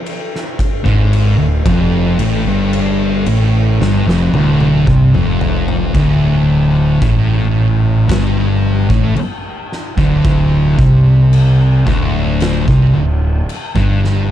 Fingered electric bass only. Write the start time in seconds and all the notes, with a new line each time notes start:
0.86 G#1
1.38 D1
1.66 F1
2.19 A1
2.46 G1
3.26 A1
3.80 G1
4.06 F1
4.33 D1
4.87 C2
5.14 F1
5.95 D1
7.02 A1
8.09 G1
8.90 A1
9.18 muted fingered electric bass stroke
9.97 D1
10.79 C2
11.87 D1
12.68 C2
12.95 D1
13.76 G1